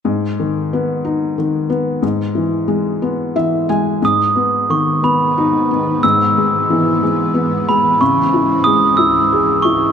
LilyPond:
<<
  \new Staff \with { instrumentName = "Glockenspiel" } { \time 6/8 \key gis \minor \tempo 4. = 61 r2. | r2. | dis'''4 cis'''8 b''4. | e'''4. r4 b''8 |
cis'''4 dis'''8 e'''4 cis'''8 | }
  \new Staff \with { instrumentName = "Felt piano" } { \clef bass \time 6/8 \key gis \minor gis,8 dis8 b8 dis'8 dis8 b8 | gis,8 e8 gis8 b8 <e e''>8 <gis gis''>8 | gis,8 b8 dis8 b8 dis'8 b8 | gis,8 gis8 e8 gis8 b8 gis8 |
cis8 e'8 gis8 e'8 gis'8 e'8 | }
  \new Staff \with { instrumentName = "Ambient pad" } { \clef bass \time 6/8 \key gis \minor << { r2. | r2. | <gis, b>2. | <gis, b>2. |
cis,2. | } \\ { r2. | r2. | dis2. | e2.~ |
e2. | } >> }
>>